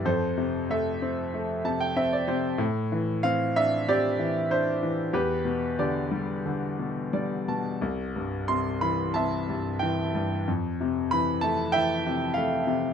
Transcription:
0.05 2.56 F2 medium
0.05 0.69 A4 soft
0.05 0.72 C5 medium
0.38 1.61 C3 soft
0.70 1.32 A3 soft
0.70 2.24 A4 soft
0.70 1.95 E5 medium
1.02 1.95 C4 soft
1.34 2.56 A3 soft
1.65 2.26 C3 soft
1.65 1.79 A5 medium
1.80 1.95 G5 medium
1.96 2.58 C4 medium
1.96 2.11 E5 medium
2.13 2.27 D5 medium
2.28 2.59 C3 soft
2.28 2.57 C5 medium
2.58 5.08 A2 medium
2.92 4.15 E3 soft
3.23 3.87 C4 medium
3.23 3.57 F5 medium
3.56 4.49 D4 medium
3.56 3.89 E5 medium
3.88 5.09 C4 soft
3.88 5.09 G4 medium
3.88 4.52 D5 medium
4.19 4.81 E3 soft
4.51 5.11 D4 soft
4.51 5.15 C5 medium
4.83 5.13 E3 soft
5.13 7.77 E2 soft
5.13 5.77 G4 medium
5.13 5.81 B4 medium
5.45 6.75 B2 soft
5.79 6.44 D3 soft
5.79 7.44 G4 soft
5.79 7.12 D5 medium
6.11 7.12 G3 soft
6.46 7.77 D3 soft
6.79 7.47 B2 soft
7.13 7.79 G3 soft
7.13 7.45 D5 soft
7.48 7.80 B2 soft
7.48 7.79 A5 soft
7.81 10.44 C2 soft
8.16 9.45 G2 soft
8.48 9.14 C3 soft
8.48 8.83 C6 medium
8.81 9.81 E3 soft
8.81 9.16 B5 medium
9.14 10.44 C3 soft
9.14 10.44 E5 soft
9.14 9.77 A5 medium
9.49 10.13 G2 soft
9.79 10.46 E3 soft
9.79 10.43 G5 medium
10.15 10.47 G2 soft
10.48 12.93 F2 medium
10.81 12.02 C3 soft
11.11 11.74 E3 soft
11.11 11.43 B5 medium
11.41 12.36 A3 soft
11.41 11.74 A5 medium
11.72 12.93 E3 soft
11.72 12.93 E5 medium
11.72 12.37 G5 medium
12.06 12.66 C3 soft
12.34 12.93 A3 medium
12.34 12.93 F5 medium
12.67 12.93 C3 soft

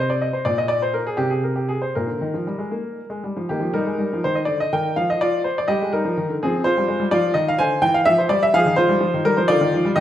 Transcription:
0.00 0.27 C3 medium
0.00 0.11 C5 medium
0.10 0.22 D5 medium
0.21 0.34 D#5 medium
0.33 0.46 C5 medium
0.45 0.98 A#2 medium
0.45 0.58 D5 medium
0.58 0.70 D#5 medium
0.68 0.82 D5 medium
0.82 0.95 C5 medium
0.94 1.06 A#4 medium
1.07 1.19 G#4 medium
1.17 1.73 C3 medium
1.17 1.31 G4 medium
1.30 1.43 G#4 medium
1.44 1.57 A#4 soft
1.56 1.69 G4 medium
1.69 1.82 G#4 medium
1.82 1.95 C5 medium
1.95 2.08 A#2 soft
1.95 3.05 A#4 medium
2.06 2.20 D3 soft
2.21 2.34 D#3 soft
2.34 2.47 F3 soft
2.47 2.59 G3 soft
2.59 2.72 G#3 soft
2.71 3.00 A#3 medium
3.10 3.23 G#3 soft
3.24 3.36 G3 soft
3.37 3.49 F3 soft
3.49 3.62 D#3 soft
3.49 3.73 A#3 soft
3.49 3.71 G4 medium
3.60 3.73 F3 soft
3.74 3.86 G3 medium
3.74 4.21 D#4 medium
3.74 4.23 A#4 medium
3.86 3.98 G#3 soft
3.98 4.10 G3 soft
4.13 4.24 F3 soft
4.24 4.41 D#3 medium
4.24 4.36 C5 medium
4.35 4.47 D#5 medium
4.45 4.64 D3 soft
4.45 4.58 D5 medium
4.60 4.72 D#5 medium
4.73 4.90 D#3 soft
4.73 4.95 A#4 medium
4.73 4.93 G5 medium
4.96 5.49 F3 medium
4.96 5.08 F5 medium
5.10 5.21 D#5 medium
5.21 5.44 F4 medium
5.21 5.41 D5 medium
5.44 5.56 C5 medium
5.58 5.69 D5 medium
5.68 5.80 G3 medium
5.68 5.91 G4 medium
5.68 5.92 D#5 medium
5.82 5.93 G#3 medium
5.93 6.04 G3 soft
5.93 6.38 D#4 medium
5.93 6.33 A#4 medium
6.05 6.16 F3 medium
6.17 6.28 D#3 medium
6.29 6.40 D3 medium
6.43 6.68 F3 medium
6.43 6.64 C4 medium
6.43 6.65 G#4 medium
6.64 7.10 F4 medium
6.64 7.05 C5 medium
6.77 6.88 G3 medium
6.88 7.00 G#3 medium
7.00 7.11 G3 medium
7.11 7.29 F3 medium
7.11 7.35 F4 medium
7.11 7.36 D5 loud
7.34 7.52 D#3 medium
7.34 7.47 D#5 medium
7.48 7.60 F5 medium
7.59 7.76 D3 medium
7.59 7.82 C5 medium
7.59 7.83 G#5 loud
7.82 8.00 E3 medium
7.82 7.95 G5 loud
7.94 8.07 F5 medium
8.05 8.24 F3 medium
8.05 8.18 E5 loud
8.18 8.31 C5 medium
8.29 8.47 G3 medium
8.29 8.42 D5 medium
8.43 8.55 E5 loud
8.54 8.65 F3 medium
8.54 8.77 G#4 medium
8.54 8.74 F5 loud
8.66 8.77 D#3 medium
8.76 8.89 F3 medium
8.76 9.22 F4 medium
8.76 9.25 C5 medium
8.89 9.01 G3 medium
9.01 9.12 F3 medium
9.14 9.25 D#3 medium
9.25 9.36 G3 medium
9.25 9.37 A#4 loud
9.37 9.49 F3 medium
9.37 9.49 C5 medium
9.48 9.60 D3 medium
9.48 9.93 F4 medium
9.48 9.89 D5 loud
9.61 9.72 D#3 medium
9.73 9.84 F3 medium
9.85 9.96 G3 medium
9.96 10.00 D#3 medium
9.96 10.00 G4 medium
9.96 10.00 D#5 loud

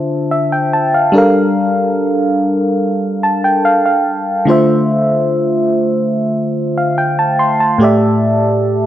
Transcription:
0.00 1.09 D3 medium
0.00 1.10 D4 medium
0.00 1.11 F4 medium
0.00 1.11 C5 medium
0.00 0.29 E5 medium
0.31 0.51 E5 medium
0.52 0.72 G5 medium
0.73 0.93 A5 medium
0.94 1.17 F5 medium
1.12 4.42 G3 medium
1.12 4.43 D4 medium
1.12 4.44 A4 medium
1.16 4.45 A#4 medium
1.16 3.64 F5 medium
3.23 3.42 A5 medium
3.44 3.63 G5 medium
3.65 3.84 F5 medium
3.86 4.44 F5 medium
4.45 7.76 D3 medium
4.45 7.76 A3 medium
4.45 7.77 F4 medium
4.50 7.78 C5 medium
4.50 6.54 E5 medium
6.78 6.97 F5 medium
6.98 7.17 G5 medium
7.19 7.38 A5 medium
7.39 7.59 C6 medium
7.60 8.00 A5 medium
7.78 8.86 A2 medium
7.78 8.86 A3 medium
7.78 8.86 G4 medium
7.83 8.86 D5 medium
7.83 8.86 E5 medium

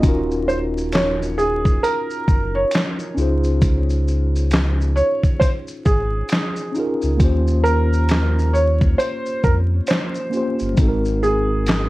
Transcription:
0.01 1.78 D#1 loud
0.01 1.64 C#4 medium
0.01 1.65 D#4 medium
0.01 1.66 F4 medium
0.01 kick loud
0.01 closed hi-hat medium
0.01 shaker medium
0.07 1.67 F#4 medium
0.07 1.68 A#4 medium
0.31 shaker soft
0.48 0.58 C5 medium
0.48 shaker soft
0.78 shaker soft
0.93 1.39 C#5 loud
0.93 finger snap medium
0.93 snare loud
0.93 clap medium
0.93 closed hi-hat medium
0.93 shaker medium
1.23 shaker soft
1.38 1.84 G#4 medium
1.38 shaker medium
1.65 kick medium
1.65 shaker soft
1.83 2.57 A#4 loud
1.83 closed hi-hat medium
1.83 shaker medium
2.10 shaker soft
2.28 2.65 F#1 medium
2.28 kick loud
2.28 shaker soft
2.55 3.13 C#5 medium
2.71 finger snap medium
2.71 snare loud
2.71 closed hi-hat medium
2.71 shaker medium
2.76 clap medium
2.99 shaker soft
3.15 5.02 C#2 loud
3.15 4.77 C#4 medium
3.15 4.78 D#4 medium
3.15 4.79 F4 medium
3.15 shaker soft
3.20 4.80 G#4 medium
3.20 4.81 C5 medium
3.44 shaker soft
3.62 kick loud
3.62 closed hi-hat medium
3.62 shaker medium
3.90 shaker soft
4.08 shaker soft
4.36 shaker soft
4.51 finger snap medium
4.51 snare loud
4.51 clap medium
4.51 closed hi-hat medium
4.51 shaker medium
4.81 shaker soft
4.96 5.42 C#5 loud
4.96 shaker soft
5.23 kick medium
5.23 shaker soft
5.40 5.50 C5 loud
5.40 kick medium
5.40 closed hi-hat medium
5.40 shaker medium
5.68 shaker soft
5.85 6.23 G#1 loud
5.85 6.71 G#4 medium
5.85 kick medium
5.85 shaker medium
6.29 finger snap medium
6.29 snare loud
6.29 closed hi-hat medium
6.29 shaker medium
6.33 clap medium
6.56 shaker soft
6.72 7.14 C#4 medium
6.72 7.15 D#4 medium
6.72 shaker soft
6.76 7.16 F4 medium
6.76 7.17 G#4 medium
6.76 7.17 A#4 medium
7.02 7.22 C#2 medium
7.02 shaker soft
7.17 8.95 D#2 loud
7.17 8.80 A#3 medium
7.17 8.81 C#4 medium
7.17 8.82 F4 medium
7.17 kick loud
7.17 closed hi-hat medium
7.17 shaker medium
7.22 8.83 G4 medium
7.22 8.84 C5 medium
7.47 shaker soft
7.64 8.56 A#4 loud
7.64 shaker soft
7.93 shaker soft
8.09 finger snap medium
8.09 snare loud
8.09 clap medium
8.09 closed hi-hat medium
8.09 shaker medium
8.39 shaker soft
8.53 8.95 C#5 loud
8.53 shaker soft
8.81 kick medium
8.81 shaker soft
8.98 9.40 C5 loud
8.98 closed hi-hat medium
8.98 shaker medium
9.26 shaker soft
9.44 9.81 F2 medium
9.44 9.54 A#4 medium
9.44 kick loud
9.44 shaker medium
9.87 10.56 C5 medium
9.87 finger snap medium
9.87 snare medium
9.87 closed hi-hat medium
9.87 shaker medium
9.92 clap medium
10.15 shaker soft
10.30 10.72 A#3 medium
10.30 10.73 C#4 medium
10.30 10.74 F4 medium
10.30 shaker soft
10.35 10.74 G4 medium
10.35 10.75 C5 medium
10.59 10.75 G1 medium
10.59 shaker soft
10.74 11.89 G#1 loud
10.74 11.89 G#3 medium
10.74 11.89 C4 medium
10.74 11.89 D#4 medium
10.74 kick loud
10.74 closed hi-hat medium
10.74 shaker medium
10.80 11.89 F#4 medium
10.80 10.88 A4 medium
10.88 11.89 A#4 medium
11.05 shaker soft
11.23 11.89 G#4 medium
11.23 shaker soft
11.67 finger snap medium
11.67 snare loud
11.67 clap medium
11.67 closed hi-hat medium
11.67 shaker medium

